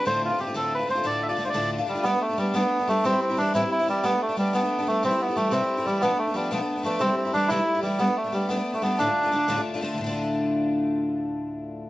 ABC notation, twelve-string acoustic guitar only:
X:1
M:6/8
L:1/16
Q:3/8=121
K:Ddor
V:1 name="Twelve-string acoustic guitar"
[D,,A,,D,A,CF]3 [D,A,CF] [D,A,CF] [D,A,CF] [D,,A,,D,A,CF]3 [D,A,CF] [D,A,CF] [D,A,CF] | [D,,A,,D,A,DF]3 [D,A,DF] [D,A,DF] [D,A,DF] [D,,A,,D,A,DF]3 [D,A,DF] [D,A,DF] [D,A,DF] | [G,A,B,D] [A,B,D]2 [A,B,D] [G,A,B,D]2 [G,A,B,D] [A,B,D]2 [A,B,D] [G,A,B,D]2 | [A,,E,G,CE] [G,CE]2 [G,CE] [E,G,CE]2 [A,,E,G,CE] [G,CE]2 [G,CE] [E,G,CE]2 |
[G,A,B,D] [A,B,D]2 [A,B,D] [G,A,B,D]2 [G,A,B,D] [A,B,D]2 [A,B,D] [G,A,B,D]2 | [C,E,G,A,E] [G,A,E]2 [G,A,E] [E,G,A,E]2 [C,E,G,A,E] [G,A,E]2 [G,A,E] [E,G,A,E]2 | [B,,F,A,B,D] [A,B,D]2 [A,B,D] [F,A,B,D]2 [B,,F,A,B,D] [A,B,D]2 [A,B,D] [F,A,B,D]2 | [C,E,G,A,E] [G,A,E]2 [G,A,E] [E,G,A,E]2 [C,E,G,A,E] [G,A,E]2 [G,A,E] [E,G,A,E]2 |
[G,A,B,D] [A,B,D]2 [A,B,D] [G,A,B,D]2 [G,A,B,D] [A,B,D]2 [A,B,D] [G,A,B,D]2 | [D,,A,,D,A,DF] [D,A,DF]2 [D,A,DF] [D,A,DF]2 [D,,A,,D,A,DF] [D,A,DF]2 [D,A,DF] [D,A,DF]2 | [D,,A,,D,A,DF]12- | [D,,A,,D,A,DF]12 |]